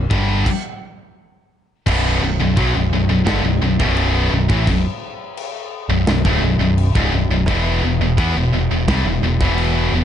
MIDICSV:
0, 0, Header, 1, 4, 480
1, 0, Start_track
1, 0, Key_signature, 2, "minor"
1, 0, Tempo, 701754
1, 1276, Time_signature, 4, 2, 24, 8
1, 6867, End_track
2, 0, Start_track
2, 0, Title_t, "Distorted electric guitar"
2, 0, Program_c, 0, 30
2, 71, Note_on_c, 0, 43, 86
2, 77, Note_on_c, 0, 50, 98
2, 78, Note_on_c, 0, 55, 100
2, 305, Note_off_c, 0, 43, 0
2, 308, Note_off_c, 0, 50, 0
2, 309, Note_off_c, 0, 55, 0
2, 1275, Note_on_c, 0, 35, 110
2, 1277, Note_on_c, 0, 42, 103
2, 1280, Note_on_c, 0, 47, 108
2, 1509, Note_off_c, 0, 35, 0
2, 1510, Note_off_c, 0, 42, 0
2, 1511, Note_off_c, 0, 47, 0
2, 1522, Note_on_c, 0, 35, 66
2, 1527, Note_on_c, 0, 42, 67
2, 1632, Note_off_c, 0, 35, 0
2, 1633, Note_off_c, 0, 42, 0
2, 1640, Note_on_c, 0, 35, 63
2, 1641, Note_on_c, 0, 42, 85
2, 1754, Note_off_c, 0, 42, 0
2, 1756, Note_on_c, 0, 47, 95
2, 1758, Note_off_c, 0, 35, 0
2, 1762, Note_on_c, 0, 54, 103
2, 1870, Note_off_c, 0, 47, 0
2, 1872, Note_off_c, 0, 54, 0
2, 1881, Note_on_c, 0, 35, 55
2, 1886, Note_on_c, 0, 42, 75
2, 1995, Note_off_c, 0, 35, 0
2, 1996, Note_off_c, 0, 42, 0
2, 2003, Note_on_c, 0, 35, 69
2, 2004, Note_on_c, 0, 42, 62
2, 2106, Note_off_c, 0, 35, 0
2, 2110, Note_off_c, 0, 42, 0
2, 2114, Note_on_c, 0, 35, 73
2, 2118, Note_on_c, 0, 42, 68
2, 2235, Note_off_c, 0, 35, 0
2, 2236, Note_off_c, 0, 42, 0
2, 2238, Note_on_c, 0, 43, 97
2, 2239, Note_on_c, 0, 50, 99
2, 2350, Note_off_c, 0, 43, 0
2, 2351, Note_off_c, 0, 50, 0
2, 2353, Note_on_c, 0, 35, 71
2, 2357, Note_on_c, 0, 42, 81
2, 2465, Note_off_c, 0, 35, 0
2, 2471, Note_off_c, 0, 42, 0
2, 2473, Note_on_c, 0, 35, 64
2, 2479, Note_on_c, 0, 42, 73
2, 2591, Note_off_c, 0, 35, 0
2, 2596, Note_off_c, 0, 42, 0
2, 2599, Note_on_c, 0, 35, 88
2, 2604, Note_on_c, 0, 42, 95
2, 2605, Note_on_c, 0, 47, 88
2, 2944, Note_off_c, 0, 35, 0
2, 2947, Note_off_c, 0, 42, 0
2, 2953, Note_on_c, 0, 35, 71
2, 2954, Note_off_c, 0, 47, 0
2, 2955, Note_on_c, 0, 42, 76
2, 3072, Note_off_c, 0, 35, 0
2, 3075, Note_on_c, 0, 45, 88
2, 3076, Note_off_c, 0, 42, 0
2, 3082, Note_on_c, 0, 52, 89
2, 3189, Note_off_c, 0, 45, 0
2, 3193, Note_off_c, 0, 52, 0
2, 3201, Note_on_c, 0, 35, 64
2, 3205, Note_on_c, 0, 42, 77
2, 3319, Note_off_c, 0, 35, 0
2, 3321, Note_off_c, 0, 42, 0
2, 4036, Note_on_c, 0, 35, 70
2, 4036, Note_on_c, 0, 42, 67
2, 4156, Note_off_c, 0, 35, 0
2, 4156, Note_off_c, 0, 42, 0
2, 4163, Note_on_c, 0, 35, 66
2, 4165, Note_on_c, 0, 42, 77
2, 4277, Note_off_c, 0, 35, 0
2, 4280, Note_off_c, 0, 42, 0
2, 4280, Note_on_c, 0, 38, 96
2, 4283, Note_on_c, 0, 45, 96
2, 4391, Note_off_c, 0, 38, 0
2, 4392, Note_off_c, 0, 45, 0
2, 4400, Note_on_c, 0, 35, 67
2, 4404, Note_on_c, 0, 42, 72
2, 4509, Note_off_c, 0, 35, 0
2, 4513, Note_off_c, 0, 42, 0
2, 4518, Note_on_c, 0, 35, 63
2, 4521, Note_on_c, 0, 42, 71
2, 4708, Note_off_c, 0, 35, 0
2, 4710, Note_off_c, 0, 42, 0
2, 4759, Note_on_c, 0, 37, 95
2, 4763, Note_on_c, 0, 44, 117
2, 4869, Note_off_c, 0, 37, 0
2, 4871, Note_off_c, 0, 44, 0
2, 4878, Note_on_c, 0, 35, 66
2, 4883, Note_on_c, 0, 42, 82
2, 4995, Note_off_c, 0, 42, 0
2, 4996, Note_off_c, 0, 35, 0
2, 5003, Note_on_c, 0, 42, 72
2, 5005, Note_on_c, 0, 35, 58
2, 5118, Note_off_c, 0, 42, 0
2, 5119, Note_off_c, 0, 35, 0
2, 5124, Note_on_c, 0, 40, 105
2, 5125, Note_on_c, 0, 47, 105
2, 5126, Note_on_c, 0, 52, 120
2, 5351, Note_off_c, 0, 40, 0
2, 5351, Note_off_c, 0, 47, 0
2, 5352, Note_off_c, 0, 52, 0
2, 5362, Note_on_c, 0, 40, 57
2, 5365, Note_on_c, 0, 47, 64
2, 5471, Note_off_c, 0, 40, 0
2, 5474, Note_off_c, 0, 47, 0
2, 5479, Note_on_c, 0, 40, 67
2, 5482, Note_on_c, 0, 47, 87
2, 5595, Note_off_c, 0, 40, 0
2, 5597, Note_off_c, 0, 47, 0
2, 5601, Note_on_c, 0, 52, 92
2, 5608, Note_on_c, 0, 59, 95
2, 5709, Note_off_c, 0, 52, 0
2, 5713, Note_off_c, 0, 59, 0
2, 5721, Note_on_c, 0, 40, 64
2, 5725, Note_on_c, 0, 47, 73
2, 5833, Note_off_c, 0, 40, 0
2, 5835, Note_off_c, 0, 47, 0
2, 5841, Note_on_c, 0, 40, 66
2, 5843, Note_on_c, 0, 47, 78
2, 5950, Note_off_c, 0, 40, 0
2, 5951, Note_off_c, 0, 47, 0
2, 5959, Note_on_c, 0, 40, 75
2, 5960, Note_on_c, 0, 47, 68
2, 6074, Note_off_c, 0, 40, 0
2, 6075, Note_off_c, 0, 47, 0
2, 6081, Note_on_c, 0, 48, 102
2, 6085, Note_on_c, 0, 55, 104
2, 6188, Note_off_c, 0, 48, 0
2, 6190, Note_off_c, 0, 55, 0
2, 6199, Note_on_c, 0, 40, 78
2, 6203, Note_on_c, 0, 47, 72
2, 6312, Note_off_c, 0, 40, 0
2, 6316, Note_off_c, 0, 47, 0
2, 6321, Note_on_c, 0, 40, 69
2, 6324, Note_on_c, 0, 47, 79
2, 6435, Note_off_c, 0, 40, 0
2, 6437, Note_off_c, 0, 47, 0
2, 6444, Note_on_c, 0, 40, 79
2, 6447, Note_on_c, 0, 52, 94
2, 6449, Note_on_c, 0, 47, 105
2, 6788, Note_off_c, 0, 40, 0
2, 6790, Note_off_c, 0, 52, 0
2, 6791, Note_off_c, 0, 47, 0
2, 6808, Note_on_c, 0, 40, 64
2, 6809, Note_on_c, 0, 47, 76
2, 6867, Note_off_c, 0, 40, 0
2, 6867, Note_off_c, 0, 47, 0
2, 6867, End_track
3, 0, Start_track
3, 0, Title_t, "Picked electric bass"
3, 0, Program_c, 1, 34
3, 72, Note_on_c, 1, 31, 97
3, 296, Note_off_c, 1, 31, 0
3, 1276, Note_on_c, 1, 23, 101
3, 1499, Note_off_c, 1, 23, 0
3, 1514, Note_on_c, 1, 23, 80
3, 1627, Note_off_c, 1, 23, 0
3, 1637, Note_on_c, 1, 23, 86
3, 1748, Note_off_c, 1, 23, 0
3, 1758, Note_on_c, 1, 35, 91
3, 1869, Note_off_c, 1, 35, 0
3, 1875, Note_on_c, 1, 23, 72
3, 1988, Note_off_c, 1, 23, 0
3, 1996, Note_on_c, 1, 23, 86
3, 2108, Note_off_c, 1, 23, 0
3, 2114, Note_on_c, 1, 23, 77
3, 2227, Note_off_c, 1, 23, 0
3, 2232, Note_on_c, 1, 31, 88
3, 2343, Note_off_c, 1, 31, 0
3, 2347, Note_on_c, 1, 23, 90
3, 2464, Note_off_c, 1, 23, 0
3, 2467, Note_on_c, 1, 23, 75
3, 2584, Note_off_c, 1, 23, 0
3, 2598, Note_on_c, 1, 23, 95
3, 2932, Note_off_c, 1, 23, 0
3, 2948, Note_on_c, 1, 23, 84
3, 3064, Note_off_c, 1, 23, 0
3, 3075, Note_on_c, 1, 33, 93
3, 3188, Note_off_c, 1, 33, 0
3, 3195, Note_on_c, 1, 23, 81
3, 3308, Note_off_c, 1, 23, 0
3, 4028, Note_on_c, 1, 23, 76
3, 4143, Note_off_c, 1, 23, 0
3, 4148, Note_on_c, 1, 23, 79
3, 4263, Note_off_c, 1, 23, 0
3, 4275, Note_on_c, 1, 26, 107
3, 4387, Note_off_c, 1, 26, 0
3, 4390, Note_on_c, 1, 23, 86
3, 4501, Note_off_c, 1, 23, 0
3, 4505, Note_on_c, 1, 23, 94
3, 4733, Note_off_c, 1, 23, 0
3, 4754, Note_on_c, 1, 25, 92
3, 4865, Note_off_c, 1, 25, 0
3, 4874, Note_on_c, 1, 23, 88
3, 4981, Note_off_c, 1, 23, 0
3, 4985, Note_on_c, 1, 23, 92
3, 5101, Note_off_c, 1, 23, 0
3, 5112, Note_on_c, 1, 28, 99
3, 5335, Note_off_c, 1, 28, 0
3, 5355, Note_on_c, 1, 28, 81
3, 5465, Note_off_c, 1, 28, 0
3, 5469, Note_on_c, 1, 28, 96
3, 5582, Note_off_c, 1, 28, 0
3, 5593, Note_on_c, 1, 40, 94
3, 5704, Note_off_c, 1, 40, 0
3, 5713, Note_on_c, 1, 28, 81
3, 5824, Note_off_c, 1, 28, 0
3, 5830, Note_on_c, 1, 28, 89
3, 5942, Note_off_c, 1, 28, 0
3, 5951, Note_on_c, 1, 28, 78
3, 6062, Note_off_c, 1, 28, 0
3, 6071, Note_on_c, 1, 36, 87
3, 6179, Note_off_c, 1, 36, 0
3, 6183, Note_on_c, 1, 28, 91
3, 6298, Note_off_c, 1, 28, 0
3, 6305, Note_on_c, 1, 28, 90
3, 6418, Note_off_c, 1, 28, 0
3, 6434, Note_on_c, 1, 28, 100
3, 6765, Note_off_c, 1, 28, 0
3, 6785, Note_on_c, 1, 28, 86
3, 6867, Note_off_c, 1, 28, 0
3, 6867, End_track
4, 0, Start_track
4, 0, Title_t, "Drums"
4, 75, Note_on_c, 9, 36, 106
4, 143, Note_off_c, 9, 36, 0
4, 316, Note_on_c, 9, 36, 95
4, 320, Note_on_c, 9, 49, 91
4, 385, Note_off_c, 9, 36, 0
4, 388, Note_off_c, 9, 49, 0
4, 1278, Note_on_c, 9, 36, 104
4, 1285, Note_on_c, 9, 49, 115
4, 1285, Note_on_c, 9, 57, 59
4, 1346, Note_off_c, 9, 36, 0
4, 1353, Note_off_c, 9, 49, 0
4, 1353, Note_off_c, 9, 57, 0
4, 1759, Note_on_c, 9, 36, 100
4, 1763, Note_on_c, 9, 57, 59
4, 1827, Note_off_c, 9, 36, 0
4, 1832, Note_off_c, 9, 57, 0
4, 2234, Note_on_c, 9, 57, 60
4, 2235, Note_on_c, 9, 38, 110
4, 2236, Note_on_c, 9, 36, 99
4, 2302, Note_off_c, 9, 57, 0
4, 2304, Note_off_c, 9, 38, 0
4, 2305, Note_off_c, 9, 36, 0
4, 2598, Note_on_c, 9, 36, 115
4, 2666, Note_off_c, 9, 36, 0
4, 2713, Note_on_c, 9, 57, 63
4, 2781, Note_off_c, 9, 57, 0
4, 3076, Note_on_c, 9, 36, 107
4, 3145, Note_off_c, 9, 36, 0
4, 3196, Note_on_c, 9, 36, 92
4, 3197, Note_on_c, 9, 57, 65
4, 3265, Note_off_c, 9, 36, 0
4, 3266, Note_off_c, 9, 57, 0
4, 3675, Note_on_c, 9, 57, 70
4, 3744, Note_off_c, 9, 57, 0
4, 4152, Note_on_c, 9, 57, 63
4, 4154, Note_on_c, 9, 38, 116
4, 4221, Note_off_c, 9, 57, 0
4, 4222, Note_off_c, 9, 38, 0
4, 4275, Note_on_c, 9, 36, 103
4, 4343, Note_off_c, 9, 36, 0
4, 4636, Note_on_c, 9, 57, 66
4, 4704, Note_off_c, 9, 57, 0
4, 4757, Note_on_c, 9, 36, 101
4, 4825, Note_off_c, 9, 36, 0
4, 5116, Note_on_c, 9, 36, 100
4, 5117, Note_on_c, 9, 57, 64
4, 5185, Note_off_c, 9, 36, 0
4, 5185, Note_off_c, 9, 57, 0
4, 5596, Note_on_c, 9, 36, 110
4, 5600, Note_on_c, 9, 57, 68
4, 5665, Note_off_c, 9, 36, 0
4, 5669, Note_off_c, 9, 57, 0
4, 6075, Note_on_c, 9, 57, 57
4, 6076, Note_on_c, 9, 36, 103
4, 6076, Note_on_c, 9, 38, 113
4, 6143, Note_off_c, 9, 57, 0
4, 6144, Note_off_c, 9, 36, 0
4, 6144, Note_off_c, 9, 38, 0
4, 6434, Note_on_c, 9, 36, 110
4, 6502, Note_off_c, 9, 36, 0
4, 6552, Note_on_c, 9, 57, 54
4, 6620, Note_off_c, 9, 57, 0
4, 6867, End_track
0, 0, End_of_file